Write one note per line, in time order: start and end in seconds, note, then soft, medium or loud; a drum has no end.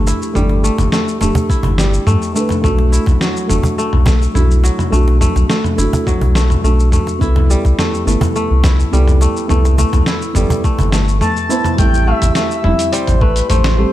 0.00 0.13 G1 medium
0.00 0.34 G3 medium
0.00 0.34 A3 medium
0.00 0.63 A3 medium
0.00 0.36 D4 medium
0.00 0.38 G4 loud
0.07 1.49 E4 medium
0.07 cajon slap medium
0.07 shaker medium
0.22 shaker soft
0.34 0.70 G1 medium
0.34 1.77 G3 medium
0.34 1.17 A3 medium
0.34 1.18 D4 medium
0.34 mid tom medium
0.34 shaker soft
0.38 1.19 G4 medium
0.49 cajon slap medium
0.64 0.92 A3 medium
0.64 shaker medium
0.78 0.87 G1 medium
0.78 cajon slap medium
0.78 mid tom medium
0.78 shaker soft
0.92 1.21 A3 medium
0.92 snare medium
0.92 shaker soft
1.08 shaker soft
1.19 1.30 D1 medium
1.19 2.03 A3 medium
1.19 2.06 A3 medium
1.19 2.04 D4 medium
1.19 cajon slap medium
1.19 mid tom medium
1.19 shaker medium
1.24 2.05 G4 medium
1.35 cajon bass medium
1.35 shaker soft
1.50 2.92 E4 medium
1.50 kick loud
1.50 shaker soft
1.63 1.99 G1 medium
1.63 cajon bass medium
1.63 mid tom medium
1.78 2.69 G3 medium
1.78 snare medium
1.78 shaker medium
1.94 shaker soft
2.07 2.16 G2 medium
2.07 2.35 A3 medium
2.07 mid tom medium
2.07 shaker soft
2.22 shaker soft
2.34 2.60 A3 medium
2.34 2.63 A3 medium
2.34 2.61 D4 medium
2.34 2.61 B4 medium
2.34 shaker medium
2.49 cajon slap medium
2.49 mid tom medium
2.49 shaker soft
2.62 2.99 B1 medium
2.62 3.45 A3 medium
2.62 3.49 A3 medium
2.62 3.46 D4 medium
2.62 3.47 F#4 medium
2.62 kick loud
2.62 mid tom medium
2.62 shaker soft
2.79 cajon slap medium
2.92 4.34 E4 medium
2.92 shaker medium
3.06 3.16 B1 medium
3.06 kick medium
3.06 cajon slap medium
3.06 mid tom medium
3.06 shaker soft
3.21 4.63 F#3 medium
3.21 snare medium
3.21 shaker soft
3.37 shaker soft
3.47 3.59 F#1 medium
3.47 4.31 A3 medium
3.47 3.78 A3 medium
3.47 4.32 D4 medium
3.47 4.33 F#4 medium
3.47 mid tom medium
3.47 shaker medium
3.63 cajon bass medium
3.63 shaker soft
3.78 4.06 A3 medium
3.78 shaker soft
3.93 4.28 B1 medium
3.93 mid tom medium
4.06 4.92 A3 medium
4.06 cajon bass medium
4.06 kick loud
4.06 cajon slap medium
4.06 snare medium
4.06 shaker medium
4.22 shaker soft
4.34 4.70 B1 loud
4.34 4.89 A3 medium
4.34 4.89 D4 medium
4.34 5.78 E4 medium
4.34 4.90 F#4 medium
4.34 mid tom medium
4.34 shaker soft
4.51 shaker soft
4.64 6.06 F#3 medium
4.64 cajon slap medium
4.64 shaker medium
4.79 mid tom medium
4.79 shaker soft
4.90 5.27 B1 medium
4.90 5.74 A3 medium
4.90 5.21 A3 medium
4.90 5.75 D4 medium
4.90 shaker soft
4.95 5.76 F#4 medium
5.08 cajon slap medium
5.21 5.49 A3 medium
5.21 mid tom medium
5.21 shaker medium
5.35 5.44 B1 medium
5.35 cajon slap medium
5.35 shaker soft
5.49 6.35 A3 medium
5.49 snare medium
5.49 shaker soft
5.64 mid tom medium
5.64 shaker soft
5.76 5.87 F#1 loud
5.76 6.60 A3 medium
5.76 6.61 D4 medium
5.76 7.21 E4 medium
5.76 6.62 F#4 medium
5.76 cajon slap medium
5.76 shaker medium
5.93 cajon bass medium
5.93 shaker soft
6.07 7.26 F#3 medium
6.07 kick medium
6.07 mid tom medium
6.07 shaker soft
6.21 6.56 B1 medium
6.21 cajon bass medium
6.35 6.64 A3 medium
6.35 snare medium
6.35 shaker medium
6.50 mid tom medium
6.50 shaker soft
6.62 6.99 B1 loud
6.62 7.17 A3 medium
6.62 6.93 A3 medium
6.62 7.18 D4 medium
6.62 7.18 F#4 medium
6.62 shaker soft
6.79 shaker soft
6.92 7.78 A3 medium
6.92 mid tom medium
6.92 shaker medium
7.07 cajon slap medium
7.07 shaker soft
7.19 7.56 C2 loud
7.19 8.02 B3 medium
7.19 8.03 E4 medium
7.19 8.64 E4 medium
7.19 kick loud
7.19 shaker soft
7.23 8.04 A4 loud
7.36 cajon slap medium
7.36 mid tom medium
7.50 8.92 G3 medium
7.50 shaker medium
7.65 7.73 C2 medium
7.65 kick medium
7.65 cajon slap medium
7.65 shaker soft
7.79 8.07 A3 medium
7.79 snare medium
7.79 mid tom medium
7.79 shaker soft
7.94 shaker soft
8.05 8.16 G1 loud
8.05 8.35 A3 medium
8.05 8.89 B3 medium
8.05 8.90 E4 medium
8.05 shaker medium
8.09 8.91 A4 medium
8.21 cajon bass medium
8.21 mid tom medium
8.21 shaker soft
8.36 9.21 A3 medium
8.36 shaker soft
8.50 8.85 C2 medium
8.63 10.07 E4 medium
8.63 cajon bass medium
8.63 kick loud
8.63 snare medium
8.63 cajon slap medium
8.63 mid tom medium
8.63 shaker medium
8.80 shaker soft
8.91 9.27 C2 loud
8.91 10.35 G3 medium
8.91 9.46 B3 medium
8.91 9.46 E4 medium
8.91 9.47 A4 medium
8.91 shaker soft
9.08 mid tom medium
9.08 shaker soft
9.21 9.50 A3 medium
9.21 cajon slap medium
9.21 shaker medium
9.37 shaker soft
9.48 9.84 C2 medium
9.48 9.78 A3 medium
9.48 10.31 B3 medium
9.48 10.32 E4 medium
9.48 10.33 A4 medium
9.48 mid tom medium
9.48 shaker soft
9.65 cajon slap medium
9.65 shaker soft
9.78 10.64 A3 medium
9.78 cajon bass medium
9.78 shaker medium
9.93 10.02 C2 medium
9.93 cajon slap medium
9.93 mid tom medium
9.93 shaker soft
10.06 11.50 E4 medium
10.06 snare medium
10.06 shaker soft
10.22 shaker soft
10.33 10.45 G1 loud
10.33 11.83 G3 medium
10.33 11.17 B3 medium
10.33 11.18 E4 medium
10.33 11.19 A4 medium
10.33 cajon slap medium
10.33 mid tom medium
10.33 shaker medium
10.50 cajon bass medium
10.50 shaker soft
10.64 10.92 A3 medium
10.64 kick loud
10.64 shaker soft
10.79 11.21 G1 loud
10.79 cajon bass medium
10.79 mid tom medium
10.79 shaker soft
10.92 11.21 A3 medium
10.92 snare medium
10.92 shaker medium
11.08 shaker soft
11.21 11.78 A3 medium
11.21 11.74 A5 medium
11.21 mid tom medium
11.21 shaker soft
11.37 shaker soft
11.49 11.75 B3 medium
11.49 11.75 E4 medium
11.49 12.64 E4 medium
11.49 11.76 C5 medium
11.49 shaker medium
11.64 cajon slap medium
11.64 mid tom medium
11.64 shaker soft
11.77 12.13 A1 medium
11.77 12.60 G3 medium
11.77 12.07 A3 medium
11.77 12.61 C4 medium
11.77 12.62 E4 medium
11.77 12.08 G5 loud
11.77 kick loud
11.77 closed hi-hat medium
11.77 mid tom medium
11.77 shaker medium
11.94 shaker soft
12.07 12.36 A3 medium
12.07 12.94 E5 medium
12.22 12.30 A1 medium
12.22 closed hi-hat soft
12.22 mid tom medium
12.22 shaker medium
12.35 13.21 A3 medium
12.35 snare medium
12.35 closed hi-hat medium
12.35 shaker medium
12.51 shaker soft
12.62 12.74 E1 loud
12.62 13.45 G3 medium
12.62 13.46 C4 medium
12.62 13.93 E4 medium
12.62 13.47 E4 medium
12.62 mid tom medium
12.79 closed hi-hat soft
12.79 shaker medium
12.92 13.93 G3 medium
12.92 13.22 C5 medium
12.92 closed hi-hat medium
12.92 shaker medium
13.07 13.42 A1 medium
13.07 closed hi-hat soft
13.07 mid tom medium
13.07 shaker soft
13.21 13.50 A3 medium
13.21 13.49 B4 medium
13.21 kick loud
13.36 closed hi-hat soft
13.36 shaker medium
13.49 13.85 A1 medium
13.49 13.78 A3 medium
13.49 13.93 C5 medium
13.49 closed hi-hat medium
13.49 mid tom medium
13.49 shaker medium
13.64 snare medium
13.64 closed hi-hat soft
13.64 shaker soft
13.77 13.93 G3 medium
13.77 13.93 A3 medium
13.77 13.93 C4 medium
13.77 13.93 G4 loud